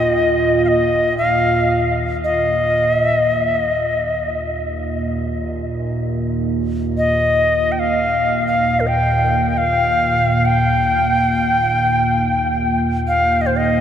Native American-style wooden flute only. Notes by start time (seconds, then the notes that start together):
Already playing: D#5
0.65 D#5 F5
1.18 F5
2.24 D#5
2.97 E5
3.17 D#5
3.38 E5
3.58 D#5
6.98 D#5
7.72 G5
7.79 F5
8.47 F5
8.80 A#4
8.87 G5
9.50 G5
9.58 F5
10.45 G5
13.08 F5
13.41 D#5
13.47 C5
13.57 D#5